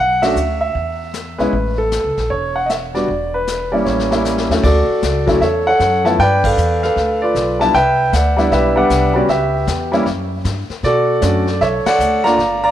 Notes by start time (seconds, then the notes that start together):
Already playing: B1 F#5
0.22 A3 C#4 D4 F#4 E5, snare, ride
0.35 D2, hi-hat pedal
0.61 E5
0.75 E2, brush sweep, kick
1.13 snare, hi-hat pedal
1.38 B1 G#3 B3 C#4 E4 B4, snare
1.52 A1, brush sweep, kick
1.78 A4
1.92 snare, hi-hat pedal
2.04 C#2
2.17 A#1, snare
2.30 E1 C#5, brush sweep, kick
2.56 F#5
2.66 D#5 E5, snare, hi-hat pedal
2.94 G3 B3 D4 F#4 D5, snare
3.08 E1, brush sweep, kick
3.34 B4
3.47 snare, hi-hat pedal
3.72 G3 A#3 C#4 E4 D5
3.85 A1 C#5, snare
3.99 snare
4.11 G3 A#3 C#4 E4, snare
4.25 snare, hi-hat pedal
4.38 snare
4.49 D2 D#2 F#3 A3 C#4 E4, snare
4.63 D2 F#4 A4 D5, brush sweep, kick, snare, crash
5.02 C#2, kick, snare, hi-hat pedal
5.27 F#3 A3 C#4 E4, kick, snare
5.41 E2 A4 C#5 E5, brush sweep, kick, snare
5.67 A4 C#5 F#5
5.79 F#2, kick, snare, hi-hat pedal
6.04 F3 A3 B3 E4 A5, snare
6.19 G2 B4 D5 G5, brush sweep, kick, snare
6.44 A4 B4 F5, kick, crash
6.57 E2, hi-hat pedal
6.83 A4 B4 F5, snare
6.96 D2, brush sweep, kick, snare
7.22 F4 B4 D5
7.35 B1, kick, snare, hi-hat pedal
7.59 G3 B3 D4 E4 A5, snare
7.74 C2 B4 E5 G5, brush sweep, kick, snare
8.12 D2 B4 D5 F#5, kick, snare, hi-hat pedal
8.37 G3 B3 D4 E4, snare
8.51 B1 G4 B4 E5, brush sweep, kick, snare
8.76 G3 B3 D4 F#5
8.89 C2, kick, snare, hi-hat pedal
9.14 G3 B3 C#4 F#4 D5
9.28 C#2 G4 B4 E5, brush sweep, kick, snare
9.67 E2, kick, snare, hi-hat pedal
9.92 G3 A#3 C#4 E4, snare
10.06 F#2, brush sweep, kick, snare
10.44 G2, kick, snare, hi-hat pedal
10.69 muted upright bass stroke, snare
10.83 B2 F#4 A4 D5, brush sweep, kick, snare
11.21 F#2 A3 C#4 D4 F#4, kick, snare, hi-hat pedal
11.47 snare
11.61 B1 A4 C#5 E5, brush sweep, kick, snare
11.86 A4 D5 F#5, muted upright bass stroke, snare, ride
11.99 D2, hi-hat pedal
12.24 A3 A#3 D4 F4 D5 F5 A#5, snare
12.38 G1, brush sweep, kick, snare
12.64 D5 F5 A#5